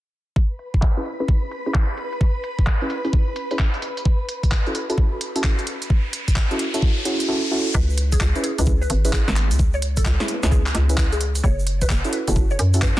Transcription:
0.36 string machine B4 B5, kick
0.59 closed hi-hat
0.74 kick, closed hi-hat
0.82 kick, clap
0.97 synth stab C#4 E4 G#4 B4, closed hi-hat
1.05 closed hi-hat
1.20 synth stab C#4 E4 G#4 B4, closed hi-hat
1.28 kick
1.51 closed hi-hat
1.66 synth stab C#4 E4 G#4 B4, closed hi-hat
1.74 kick, clap
1.89 closed hi-hat
1.97 closed hi-hat
2.12 closed hi-hat
2.21 kick
2.44 closed hi-hat
2.59 kick, closed hi-hat
2.67 kick, clap
2.82 synth stab C#4 E4 G#4 B4, closed hi-hat
2.90 closed hi-hat
3.05 synth stab C#4 E4 G#4 B4, closed hi-hat
3.13 kick
3.36 closed hi-hat
3.51 synth stab C#4 E4 G#4 B4, closed hi-hat
3.59 kick, clap
3.74 closed hi-hat
3.82 closed hi-hat
3.97 closed hi-hat
4.05 kick, riser
4.29 closed hi-hat
4.43 kick, closed hi-hat
4.52 kick, clap
4.66 synth stab C#4 E4 F#4 A4, closed hi-hat
4.75 closed hi-hat
4.89 synth stab C#4 E4 F#4 A4, closed hi-hat
4.98 kick
5.21 closed hi-hat
5.36 synth stab C#4 E4 F#4 A4, closed hi-hat
5.44 kick, clap
5.59 closed hi-hat
5.67 closed hi-hat
5.82 closed hi-hat
5.90 kick
6.13 closed hi-hat
6.28 kick, closed hi-hat
6.36 kick, clap
6.51 synth stab C#4 E4 F#4 A4, closed hi-hat
6.59 closed hi-hat
6.74 synth stab C#4 E4 F#4 A4, closed hi-hat
6.82 kick
7.05 synth stab C#4 E4 F#4 G#4, closed hi-hat
7.20 closed hi-hat
7.28 synth stab C#4 E4 F#4 A4
7.51 synth stab C#4 E4 F#4 A4
7.74 fm bass C#2, synth pluck B4, kick, shaker
7.90 shaker
7.98 closed hi-hat
8.12 synth pluck G#4, kick, closed hi-hat, shaker
8.21 fm bass C#2, kick, clap, shaker
8.35 synth stab C#4 E4 G#4 B4, closed hi-hat, shaker
8.43 synth pluck G#4, closed hi-hat
8.58 fm bass C#2, synth stab C#4 E4 G#4 B4, closed hi-hat, shaker
8.66 kick, shaker
8.81 synth pluck B4, shaker
8.90 fm bass G#1, closed hi-hat
9.05 synth stab C#4 E4 G#4 B4, closed hi-hat, shaker
9.13 synth pluck G#4, kick, clap
9.28 fm bass G#1, snare, closed hi-hat, shaker
9.36 clap, closed hi-hat
9.51 fm bass C#2, closed hi-hat, shaker
9.59 kick, shaker
9.73 synth pluck C#5, shaker
9.82 closed hi-hat
9.97 synth pluck A4, kick, closed hi-hat, shaker
10.05 fm bass C#2, kick, clap, shaker
10.20 synth stab C#4 E4 G#4 B4, synth pluck B4, snare, closed hi-hat, shaker
10.28 closed hi-hat
10.43 fm bass C#2, synth stab C#4 E4 G#4 B4, snare, closed hi-hat, shaker
10.51 synth pluck G#4, kick, shaker
10.66 clap, shaker
10.74 fm bass C#2, snare, closed hi-hat
10.89 synth stab C#4 E4 G#4 B4, closed hi-hat, shaker
10.98 kick, clap, shaker
11.12 synth pluck G#4, closed hi-hat, shaker
11.21 closed hi-hat
11.35 closed hi-hat, shaker
11.43 fm bass F#1, synth pluck C#5, kick, shaker
11.59 shaker
11.67 closed hi-hat
11.81 synth pluck B4, kick, closed hi-hat, shaker
11.90 fm bass F#1, kick, clap, shaker
12.04 synth stab C#4 E4 F#4 A4, closed hi-hat, shaker
12.13 synth pluck B4, closed hi-hat
12.28 fm bass F#1, synth stab C#4 E4 F#4 A4, closed hi-hat, shaker
12.36 kick
12.50 synth pluck C#5, shaker
12.59 fm bass F#2, closed hi-hat
12.74 synth stab C#4 E4 F#4 A4, closed hi-hat, shaker
12.82 synth pluck B4, kick, clap, shaker
12.96 snare, closed hi-hat, shaker

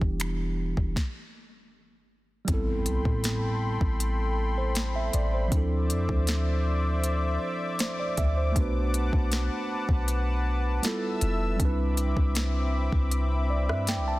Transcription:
Already playing: tine electric piano E3 G3 B3 D4 E4 G4
0.01 808-style bass E1, kick
0.20 finger snap, closed hi-hat
0.77 808-style bass E1, kick
0.96 kick, snare
2.45 808-style bass A1, tine electric piano G3 B3, analog synth pad A4 G5 B5 C6, kick, closed hi-hat, impact
2.49 tine electric piano C4 E4
2.54 tine electric piano A4
2.86 808-style bass C2, closed hi-hat
3.05 808-style bass A2, kick
3.24 snare, closed hi-hat
3.81 808-style bass A1, kick
4.00 closed hi-hat
4.58 tine electric piano C5
4.75 snare, closed hi-hat
4.96 tine electric piano E5
5.13 808-style bass A1, tine electric piano D5, closed hi-hat
5.34 tine electric piano C5
5.48 808-style bass D2, tine electric piano F3 C4, analog synth pad C5 D5 E5 D6, kick, closed hi-hat
5.52 tine electric piano D4 E4
5.57 tine electric piano A4
5.90 808-style bass F2, closed hi-hat
6.09 808-style bass D2, kick
6.27 snare, closed hi-hat
7.04 closed hi-hat
7.79 tine electric piano C5, snare, closed hi-hat
8.00 tine electric piano D5
8.17 808-style bass D2, tine electric piano E5, kick, closed hi-hat
8.37 tine electric piano C5
8.52 tine electric piano A3 B3, analog synth pad B4 F#5 A5, kick
8.56 808-style bass B1, tine electric piano D4 F#4, closed hi-hat
8.61 tine electric piano B4
8.94 closed hi-hat
9.13 808-style bass B1, kick
9.32 snare, closed hi-hat
9.89 808-style bass B1, kick
10.08 closed hi-hat
10.82 tine electric piano G3 B3 E4 F4, analog synth pad E5 E6, snare, closed hi-hat
10.87 tine electric piano A4
11.21 808-style bass F1, closed hi-hat
11.56 808-style bass C2, tine electric piano G3 C4, analog synth pad C4 E5 B5 D6, kick, closed hi-hat
11.61 tine electric piano D4 D#4
11.65 tine electric piano B4
11.69 tine electric piano E4
11.97 closed hi-hat
12.17 808-style bass C2, kick
12.35 snare, closed hi-hat
12.92 808-style bass C2, kick
13.11 closed hi-hat
13.50 tine electric piano D5
13.69 808-style bass G2, tine electric piano E5, cross-stick
13.87 tine electric piano G5, snare, closed hi-hat
13.97 808-style bass C2
14.08 tine electric piano A5

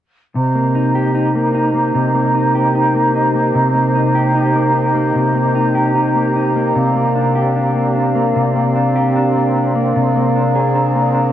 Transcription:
0.35 clean electric guitar C3, flute section G4 C5 D#5 A#5
0.55 clean electric guitar A#3
0.75 clean electric guitar D#4
0.95 clean electric guitar G4
1.15 clean electric guitar D#4
1.35 clean electric guitar A#3
1.55 clean electric guitar D#4
1.74 clean electric guitar A#3
1.95 clean electric guitar C3
2.15 clean electric guitar A#3
2.35 clean electric guitar D#4
2.55 clean electric guitar G4
2.75 clean electric guitar D#4
2.95 clean electric guitar A#3
3.15 clean electric guitar D#4
3.35 clean electric guitar A#3
3.55 clean electric guitar C3
3.75 clean electric guitar A#3
3.95 clean electric guitar D#4
4.15 clean electric guitar G4
4.35 clean electric guitar D#4
4.55 clean electric guitar A#3
4.75 clean electric guitar D#4
4.95 clean electric guitar A#3
5.15 clean electric guitar C3
5.35 clean electric guitar A#3
5.55 clean electric guitar D#4
5.75 clean electric guitar G4
5.95 clean electric guitar D#4
6.15 clean electric guitar A#3
6.36 clean electric guitar D#4
6.55 clean electric guitar A#3
6.75 clean electric guitar C3, flute section C4 D5 F5
6.95 clean electric guitar A#3
7.15 clean electric guitar D4
7.35 clean electric guitar G4
7.56 clean electric guitar D4
7.75 clean electric guitar A#3
7.95 clean electric guitar D4
8.15 clean electric guitar A#3
8.36 clean electric guitar C3
8.56 clean electric guitar A#3
8.75 clean electric guitar D4
8.96 clean electric guitar G4
9.16 clean electric guitar D4
9.36 clean electric guitar A#3
9.56 clean electric guitar D4
9.76 clean electric guitar A#3
9.95 clean electric guitar C3, flute section G#4 A#5
10.16 clean electric guitar A#3
10.36 clean electric guitar D4
10.55 clean electric guitar G#4
10.75 clean electric guitar D4
10.95 clean electric guitar A#3
11.14 clean electric guitar D4

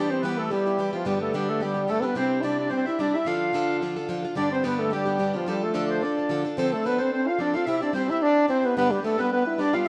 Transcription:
Already playing: steel-string acoustic guitar E3 G3 B3 E4 G4, french horn D4, accordion D5
0.08 french horn C4, accordion C5
0.22 steel-string acoustic guitar E3 G3 B3 E4 G4, french horn B3, accordion B4
0.38 french horn A3, accordion A4
0.50 steel-string acoustic guitar G3 B3 E4 G4, french horn G3, accordion G4
0.65 steel-string acoustic guitar B3 E4 G4
0.78 steel-string acoustic guitar E3 G3 B3 E4 G4
0.93 french horn F3, steel-string acoustic guitar B3 E4 G4, accordion F4
1.05 steel-string acoustic guitar G2 D3 G3 B3 D4 G4, french horn G3, accordion G4
1.21 french horn A3, accordion A4
1.33 steel-string acoustic guitar G2 D3 G3 B3 D4 G4, french horn G3, accordion G4
1.48 french horn A3, accordion A4
1.60 steel-string acoustic guitar G3 B3 D4 G4, french horn G3, accordion G4
1.74 steel-string acoustic guitar G3 B3 D4 G4
1.88 steel-string acoustic guitar G2 D3 G3 B3 D4 G4, french horn A3, accordion A4
2.01 steel-string acoustic guitar B3 D4 G4, french horn C4, accordion B4
2.05 steel-string acoustic guitar G3, french horn B3
2.15 steel-string acoustic guitar C3 G3 D4 E4 G4, french horn C4, accordion C5
2.41 steel-string acoustic guitar C3 G3 D4 E4 G4, french horn D4 E4, accordion D5
2.59 french horn D4, accordion D5
2.69 steel-string acoustic guitar G3 D4 E4 G4, french horn C4, accordion C5
2.85 steel-string acoustic guitar E4 G4, french horn E4, accordion E5
2.89 steel-string acoustic guitar D4
2.99 steel-string acoustic guitar C3 G3 D4 E4 G4, french horn D4, accordion D5
3.13 steel-string acoustic guitar D4 E4 G4, french horn E4, accordion E5
3.25 steel-string acoustic guitar D3 F3 D4 F4 A4, french horn F4, accordion F5
3.53 steel-string acoustic guitar D3 F3 D4 F4 A4
3.81 steel-string acoustic guitar F3 D4 F4 A4
3.96 steel-string acoustic guitar D4 F4 A4
4.09 steel-string acoustic guitar D3 F3 D4 F4 A4
4.22 steel-string acoustic guitar D4 F4 A4
4.35 steel-string acoustic guitar G2 D3 G3 B3 D4 G4, french horn D4, accordion D5
4.51 french horn C4, accordion C5
4.63 steel-string acoustic guitar G2 D3 G3 B3 D4 G4, french horn B3, accordion B4
4.75 accordion A4 B4
4.80 french horn A3
4.90 steel-string acoustic guitar G3 B3 D4 G4, french horn G3, accordion G4
5.05 steel-string acoustic guitar G3 B3 D4 G4
5.18 steel-string acoustic guitar G2 D3 G3 B3 D4 G4
5.34 french horn F3, steel-string acoustic guitar G3 B3 D4 G4, accordion F4
5.46 steel-string acoustic guitar D3 F3 D4 F4 A4, french horn G3, accordion G4
5.62 french horn A3, accordion A4
5.74 steel-string acoustic guitar D3 F3 D4 F4 A4
5.86 accordion C5 D5
6.01 steel-string acoustic guitar F3 D4 A4, french horn D4, accordion D5
6.17 steel-string acoustic guitar D4 F4 A4
6.29 steel-string acoustic guitar D3 F3 D4 F4 A4
6.45 steel-string acoustic guitar D4 F4 A4
6.57 steel-string acoustic guitar D3 F3 C4 D4 A4, french horn C4, accordion C5
6.72 french horn A3, steel-string acoustic guitar C4 D4 A4, accordion A4
6.84 steel-string acoustic guitar F3 C4 D4 A4, french horn B3, accordion B4
6.98 french horn C4, steel-string acoustic guitar C4 D4 A4, accordion C5
7.12 french horn C4, accordion C5
7.27 french horn F4, accordion F5
7.39 steel-string acoustic guitar F3 C4 D4 A4, french horn D4, accordion D5
7.53 steel-string acoustic guitar C4 D4 A4, french horn F4, accordion F5
7.65 steel-string acoustic guitar C3 G3 C4 E4 G4, french horn E4, accordion E5
7.77 steel-string acoustic guitar G4, accordion E5
7.81 steel-string acoustic guitar C4 E4, french horn D4, accordion D5
7.93 steel-string acoustic guitar G3 C4 E4 G4, french horn C4, accordion C5
8.08 steel-string acoustic guitar C4 E4 G4, french horn E4, accordion E5
8.22 french horn D4, accordion D5
8.48 steel-string acoustic guitar G3 C4 E4 G4, french horn C4, accordion C5
8.62 french horn B3, steel-string acoustic guitar C4 E4 G4, accordion B4
8.77 steel-string acoustic guitar G2 D3 G3 B3 D4 G4, french horn B3, accordion B4
8.91 french horn G3, steel-string acoustic guitar G3 B3 D4 G4, accordion G4
9.03 steel-string acoustic guitar G3 B3 D4 G4, french horn A3, accordion A4
9.18 steel-string acoustic guitar G3 B3 D4 G4, french horn B3, accordion B4
9.32 french horn B3, accordion B4
9.47 french horn E4
9.58 steel-string acoustic guitar G3 B3 D4 G4, french horn D4, accordion D5
9.73 steel-string acoustic guitar G3 B3 D4 G4, french horn F4, accordion F5

